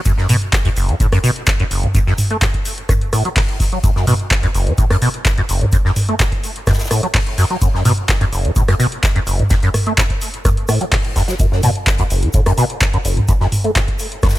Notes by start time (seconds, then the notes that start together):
0.05 F#2, kick, closed hi-hat, shaker
0.17 F#2, snare
0.29 B2, mid tom, open hi-hat, shaker
0.42 closed hi-hat
0.53 kick, snare, clap, closed hi-hat, shaker
0.65 F#2, kick, closed hi-hat
0.76 F#1, open hi-hat, shaker
0.89 F#2, closed hi-hat
1.00 A2, kick, closed hi-hat, shaker
1.12 F#2, cross-stick, closed hi-hat
1.24 B2, open hi-hat, shaker
1.36 closed hi-hat
1.47 kick, snare, clap, closed hi-hat, shaker
1.60 F#2, closed hi-hat
1.71 F#1, open hi-hat, shaker
1.83 E2, closed hi-hat, mid tom
1.95 F#2, kick, closed hi-hat, shaker
2.07 F#2, snare
2.18 mid tom, open hi-hat, shaker
2.30 A3, closed hi-hat
2.42 A2, kick, snare, clap, closed hi-hat, shaker
2.54 kick, closed hi-hat
2.65 open hi-hat, shaker
2.78 closed hi-hat
2.89 F#2, kick, cross-stick, closed hi-hat, mid tom, shaker
3.01 closed hi-hat
3.13 A2, cross-stick, open hi-hat, shaker
3.25 F#3, closed hi-hat
3.36 A2, kick, snare, clap, closed hi-hat, open hi-hat
3.49 closed hi-hat
3.60 kick, snare, open hi-hat, shaker
3.72 F#3, closed hi-hat
3.84 F#2, kick, closed hi-hat, shaker
3.96 F#2, snare
4.07 B2, mid tom, open hi-hat, shaker
4.20 closed hi-hat
4.31 kick, snare, clap, closed hi-hat, shaker
4.43 F#2, kick, closed hi-hat
4.54 F#1, open hi-hat, shaker
4.67 F#2, closed hi-hat
4.78 A2, kick, closed hi-hat, shaker
4.90 F#2, cross-stick, closed hi-hat
5.02 B2, open hi-hat, shaker
5.14 closed hi-hat
5.25 kick, snare, clap, closed hi-hat, shaker
5.38 F#2, closed hi-hat
5.49 F#1, open hi-hat, shaker
5.61 E2, closed hi-hat, mid tom
5.72 F#2, kick, closed hi-hat, shaker
5.85 F#2, snare
5.96 mid tom, open hi-hat, shaker
6.09 A3, closed hi-hat
6.20 A2, kick, snare, clap, closed hi-hat, shaker
6.32 kick, closed hi-hat
6.44 open hi-hat, shaker
6.56 closed hi-hat
6.67 F#2, kick, cross-stick, snare, closed hi-hat, mid tom, shaker
6.73 snare, shaker
6.79 snare, closed hi-hat, shaker
6.84 snare, shaker
6.91 A2, cross-stick, open hi-hat, shaker
7.03 F#3, closed hi-hat
7.14 A2, kick, snare, clap, closed hi-hat, open hi-hat
7.27 closed hi-hat
7.37 F#2, snare, open hi-hat, shaker
7.50 F#3, closed hi-hat
7.62 F#2, kick, closed hi-hat, shaker
7.74 F#2, snare
7.85 B2, mid tom, open hi-hat, shaker
7.98 closed hi-hat
8.09 kick, snare, clap, closed hi-hat, shaker
8.21 F#2, kick, closed hi-hat
8.33 F#1, open hi-hat, shaker
8.45 F#2, closed hi-hat
8.56 A2, kick, closed hi-hat, shaker
8.68 F#2, cross-stick, closed hi-hat
8.80 B2, open hi-hat, shaker
8.92 closed hi-hat
9.03 kick, snare, clap, closed hi-hat, shaker
9.16 F#2, closed hi-hat
9.27 F#1, open hi-hat, shaker
9.39 E2, closed hi-hat, mid tom
9.50 F#2, kick, snare, closed hi-hat, shaker
9.62 F#2, closed hi-hat
9.74 cross-stick, mid tom, open hi-hat, shaker
9.87 A3, closed hi-hat
9.98 A2, kick, snare, clap, closed hi-hat, shaker
10.10 kick, closed hi-hat
10.21 open hi-hat, shaker
10.34 closed hi-hat
10.45 F#2, kick, cross-stick, closed hi-hat, mid tom, shaker
10.57 closed hi-hat
10.68 A2, cross-stick, open hi-hat, shaker
10.81 F#3, closed hi-hat
10.91 A2, kick, snare, clap, closed hi-hat, open hi-hat
11.05 closed hi-hat
11.16 F#2, kick, snare, open hi-hat, shaker
11.28 F#3, snare, closed hi-hat, shaker
11.39 F#2, kick, closed hi-hat, shaker
11.52 F#2, snare
11.63 B2, mid tom, open hi-hat, shaker
11.75 closed hi-hat
11.86 kick, snare, clap, closed hi-hat, shaker
11.98 F#2, kick, closed hi-hat
12.10 F#1, open hi-hat, shaker
12.23 F#2, closed hi-hat
12.33 A2, kick, closed hi-hat, shaker
12.46 F#2, cross-stick, closed hi-hat
12.58 B2, open hi-hat, shaker
12.70 closed hi-hat
12.81 kick, snare, clap, closed hi-hat, shaker
12.93 F#2, closed hi-hat
13.05 F#1, open hi-hat, shaker
13.17 E2, closed hi-hat, mid tom
13.28 F#2, kick, closed hi-hat, shaker
13.41 F#2, snare
13.52 mid tom, open hi-hat, shaker
13.64 A3, closed hi-hat
13.76 A2, kick, snare, clap, closed hi-hat, shaker
13.88 kick, closed hi-hat
13.99 open hi-hat, shaker
14.12 closed hi-hat
14.23 F#2, kick, cross-stick, snare, closed hi-hat, mid tom, shaker
14.29 snare, shaker
14.35 snare, closed hi-hat, shaker